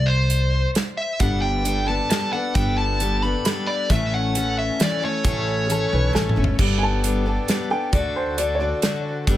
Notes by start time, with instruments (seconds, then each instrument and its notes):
Already playing: upright bass C2
0.06 lead electric guitar C5
0.30 closed hi-hat
0.75 snare, closed hi-hat
0.97 lead electric guitar E5
1.19 upright bass G1, steel-string acoustic guitar G3 B3 D4 A4, accordion D4 G4 A4 B4, lead electric guitar F#5, kick, closed hi-hat
1.42 lead electric guitar G5
1.65 steel-string acoustic guitar G3 B3 D4 A4, closed hi-hat
1.87 steel-string acoustic guitar B3 D4 A4, lead electric guitar A5
2.10 steel-string acoustic guitar G3 B3 D4 A4, lead electric guitar A5, snare, closed hi-hat
2.33 steel-string acoustic guitar B3 D4 A4, lead electric guitar F#5
2.55 upright bass G1, steel-string acoustic guitar G3 B3 D4 A4, lead electric guitar G5, kick, closed hi-hat
2.78 lead electric guitar A5
3.00 steel-string acoustic guitar G3 B3 D4 A4, closed hi-hat
3.23 steel-string acoustic guitar B3 D4 A4, lead electric guitar B5
3.45 steel-string acoustic guitar G3 B3 D4 A4, lead electric guitar B5, snare, closed hi-hat
3.67 lead electric guitar D5
3.90 upright bass A1, steel-string acoustic guitar A2 E3 A3 C#4 A4, accordion C#4 E4 A4 C#5, lead electric guitar E5, kick, closed hi-hat
4.14 lead electric guitar F#5
4.35 steel-string acoustic guitar E3 A3 C#4 A4, closed hi-hat
4.59 lead electric guitar E5
4.79 steel-string acoustic guitar E3 A3 C#4 A4, lead electric guitar D5, snare, closed hi-hat
5.02 steel-string acoustic guitar A3 C#4 A4, lead electric guitar C#5
5.24 upright bass A1, steel-string acoustic guitar A2 E3 A3 C#4 A4, kick, closed hi-hat
5.67 steel-string acoustic guitar E3 A3 C#4, upright piano G#4, closed hi-hat
5.71 steel-string acoustic guitar A4, upright piano A4
5.93 upright bass B1, upright piano B4
6.13 upright bass A1, steel-string acoustic guitar E3 A3 C#4 A4, upright piano A4, snare
6.29 mid tom
6.36 upright bass G1, steel-string acoustic guitar A3 C#4 A4
6.44 floor tom
6.58 upright bass G1, steel-string acoustic guitar G3 B3 D4 A4, accordion B3 D4 G4 A4, kick, crash
6.78 upright piano G#5
6.83 upright piano A5
7.03 steel-string acoustic guitar G3 B3 D4 A4, closed hi-hat
7.26 steel-string acoustic guitar B3 D4 A4
7.48 steel-string acoustic guitar G3 B3 D4 A4, snare, closed hi-hat
7.70 steel-string acoustic guitar B3 D4 A4, upright piano G5
7.92 upright bass D2, steel-string acoustic guitar D3 D4 F#4 A4, accordion A3 D4 F#4 A4, upright piano D5, kick, closed hi-hat
8.16 upright piano C5
8.37 steel-string acoustic guitar D3 D4 F#4 A4, upright piano D5, closed hi-hat
8.55 upright piano C#5
8.59 steel-string acoustic guitar D4 F#4 A4, upright piano D5
8.82 steel-string acoustic guitar D3 D4 F#4 A4, snare, closed hi-hat
9.26 upright bass G1, steel-string acoustic guitar G3 B3 D4 A4, accordion B3 D4 G4 A4, kick, closed hi-hat